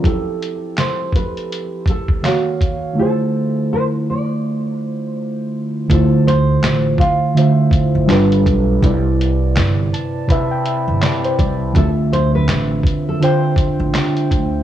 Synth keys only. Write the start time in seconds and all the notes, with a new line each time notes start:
0.00 F3 C4
0.04 E4 G4
0.09 A4
2.22 D#3 A#3 F#4 F5
2.26 C#5
2.93 D3 A3
2.97 E4 F4
3.02 C5
5.88 D3 A3 E4 F4
5.93 C5
7.34 D3 A3 F4 E5
7.39 C5
8.07 G3 D4 F4 A4
8.12 B4
8.81 C3 C4 E4 B4
8.86 D5
9.93 A5
10.27 C3 C4 E4 B4 B5
10.32 E5
10.51 G5
10.67 E5
11.03 D5
11.25 C5
11.39 D5
11.73 D3 C4 D4 F4
11.77 E5
13.20 D3 D4 F4 C5
13.24 G5